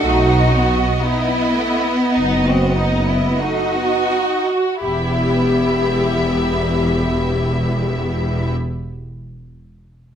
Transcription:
0.02 0.88 B1 medium
0.02 0.26 A3 soft
0.02 0.53 D#4 medium
0.02 1.04 F#4 medium
0.02 4.45 D#5 soft
0.28 0.53 B3 soft
0.52 3.40 B3 medium
0.52 0.78 D#4 soft
0.77 1.04 F#4 soft
1.04 1.31 D#4 soft
1.04 2.16 E4 medium
1.31 1.58 B3 soft
1.59 1.87 A3 soft
1.86 2.15 B3 soft
2.16 3.18 F#1 medium
2.16 2.45 D#4 medium
2.16 2.44 D#4 soft
2.45 2.77 C4 medium
2.45 2.75 F#4 soft
2.76 3.07 D#4 soft
2.76 3.07 D#4 medium
3.08 3.41 B3 soft
3.08 3.41 E4 medium
3.40 3.75 A3 soft
3.40 4.11 D#4 soft
3.40 4.83 F#4 medium
3.75 4.11 B3 soft
4.12 4.48 D#4 soft
4.49 4.84 F#4 soft
4.84 8.50 E1 soft
4.84 8.50 E2 soft
4.84 8.51 B3 soft
4.84 8.51 E4 soft
4.84 8.51 G4 soft
4.84 8.50 E5 soft

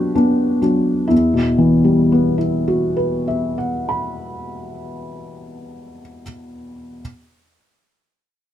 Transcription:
0.00 0.62 F#3 soft
0.00 0.15 B3 soft
0.00 0.15 D4 soft
0.00 0.63 F#4 soft
0.00 1.14 G4 soft
0.15 0.59 B3 soft
0.15 0.59 D4 soft
0.62 1.06 F#3 soft
0.62 1.06 D4 soft
1.08 6.01 E2 soft
1.08 2.36 E4 soft
1.34 6.22 B2 soft
1.58 6.22 E3 soft
1.84 6.22 G3 soft
2.12 6.22 B3 soft
2.38 6.22 E4 soft
2.68 6.22 F#4 soft
2.97 6.22 B4 soft
3.28 6.23 E5 soft
3.58 6.22 F#5 soft
3.89 6.22 B5 soft

